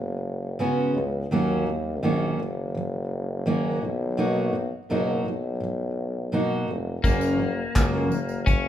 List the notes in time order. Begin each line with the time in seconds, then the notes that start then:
Already playing: F#1 C#3 G#3
0.59 C#3 G#3 B3 C#4 F#4
0.95 C#2 C#3 G#3
1.31 D#2 D#3 F#3 A#3 C#4 F#4
1.67 D#3 F#3
2.03 A#1 D#3 F#3 A#3 C#4 F#4
2.38 F#1 D#3
2.42 F#3
2.75 D#3 F#3
3.46 D#3 F#3 A#3 C#4 F#4
3.81 B1 B2 F#3
4.17 B2 F#3 A#3 D#4 F#4
4.53 B2 F#3
4.90 F#1 B2 F#3 A#3 D#4 F#4
5.25 B1 B2 F#3
5.60 B2 F#3
6.32 B2 F#3 A#3 D#4 F#4
6.68 F1 B2 F#3
7.04 F#1 F#2 C#3 F#3 A#3 C#4 F#4, kick, tambourine
7.21 tambourine
7.39 F#2 C#3 F#3
7.75 C#2 F#2 C#3 F#3 A#3 C#4 F#4, kick, clap, tambourine
8.10 F#1 F#2 C#3, tambourine
8.29 tambourine
8.46 F#2 C#3 F#3 C#4, kick, tambourine